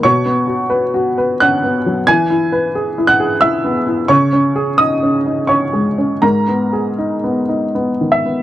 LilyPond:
\new Staff \with { instrumentName = "Upright piano" } { \time 3/4 \key b \major \tempo 4 = 86 << { <cis'' cis'''>2 <fis'' fis'''>4 | <gis'' gis'''>4. <fis'' fis'''>8 <e'' e'''>4 | <cis'' cis'''>4 <dis'' dis'''>4 <cis'' cis'''>4 | <ais' ais''>2 r8 e''8 | } \\ { \tuplet 3/2 { b,8 b8 fis'8 b'8 fis'8 b'8 cis'8 b8 fis8 } | \tuplet 3/2 { e8 e'8 b'8 gis'8 e'8 gis'8 e'8 b8 e'8 } | \tuplet 3/2 { cis8 cis'8 gis'8 dis'8 cis'8 dis'8 cis'8 gis8 cis'8 } | \tuplet 3/2 { gis,8 b8 gis'8 dis'8 b8 dis'8 b8 dis8 b8 } | } >> }